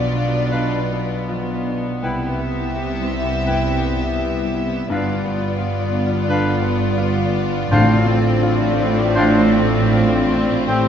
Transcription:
Already playing: grand piano B1 B3 F4, double bass section B1, harp B2 B3 D4 F4, cello section B2, viola section B3, french horn section D4 F4, violin section F4 D5
0.02 harp F3
0.15 grand piano D4
0.29 harp F4
0.51 harp B2, grand piano B2, clarinet D4, oboe B4, flute F5
0.79 harp D4
0.92 grand piano B3
1.05 harp B3
1.29 harp F3, grand piano F4
1.54 harp B3
1.66 grand piano D4
1.80 harp F4
2.02 grand piano C2, double bass section C2, cello section C3, harp C3, french horn section B3 E4, clarinet E4, violin section G4 E5, oboe B4, flute G5
2.29 harp G4
2.38 grand piano B3
2.52 harp E4
2.76 harp B3, grand piano G4
3.00 harp G3
3.13 grand piano E4
3.25 harp G4
3.47 grand piano G2, harp G3, clarinet E4, oboe B4, flute G5
3.73 harp G4
3.85 grand piano B3
3.96 harp E4
4.19 harp B3, grand piano G4
4.43 harp G3
4.54 grand piano E4
4.67 harp G4
4.89 double bass section G1, grand piano G2, cello section G2, harp G2, viola section B3, clarinet D4, violin section F4 D5, french horn section F4, oboe B4, flute F5
5.14 harp F4
5.25 grand piano B3
5.37 harp D4
5.59 harp B3, grand piano F4
5.83 harp D3
5.92 grand piano D4
6.06 harp F4
6.28 grand piano D3, harp D3, clarinet D4, oboe B4, flute F5
6.53 harp F4
6.62 grand piano B3
6.76 harp D4
6.98 harp B3, grand piano F4
7.26 harp D3
7.35 grand piano D4
7.49 harp F4
7.72 double bass section A1, grand piano A2, cello section A2, timpani A2, harp A2, viola section C4, clarinet D4, french horn section D4, oboe C5, flute F5
7.97 harp F4
8.06 grand piano C4
8.20 harp D4
8.43 harp C4, grand piano F4
8.68 harp A3
8.80 grand piano D4
8.93 harp F4
9.15 grand piano A2, harp A2, clarinet D4, oboe C5, flute F5
9.42 harp D4
9.53 grand piano C4
9.66 harp C4
9.91 harp A3, grand piano F4
10.16 harp C4
10.30 grand piano D4
10.42 harp F4
10.65 harp A2, timpani A2, grand piano A2, clarinet C4, violin section G4 C5, oboe C5, flute G5
10.70 french horn section C4 G4
10.84 timpani A2

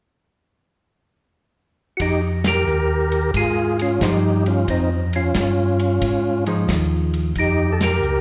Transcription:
1.97 tonewheel organ F2 F#4, kick, ride
2.01 tonewheel organ D#4 G4
2.44 tonewheel organ G4 A#4, snare, ride
2.67 tonewheel organ D#2, hi-hat pedal
3.12 ride
3.34 tonewheel organ G#2 F4 G#4, kick, ride
3.79 tonewheel organ C#4 F4, ride
4.01 tonewheel organ G2 D#4 G4, hollow-body jazz guitar F3 D#4 C5, kick, snare, hi-hat pedal, ride
4.46 tonewheel organ C#4 F4, ride
4.68 tonewheel organ F2 C4 D#4, kick, ride
5.13 tonewheel organ C#4 F4, ride
5.35 tonewheel organ G2, kick, snare, hi-hat pedal, ride
5.79 ride
6.02 tonewheel organ G#2, kick, ride
6.46 hollow-body jazz guitar F3 D#4 G#4 C5, ride
6.68 tonewheel organ D#2, kick, snare, hi-hat pedal, ride
7.14 ride
7.35 tonewheel organ F2 D#4, kick, ride
7.40 tonewheel organ G4
7.72 tonewheel organ A4
7.81 tonewheel organ G4 A#4, snare, ride
8.02 tonewheel organ C#2, hi-hat pedal

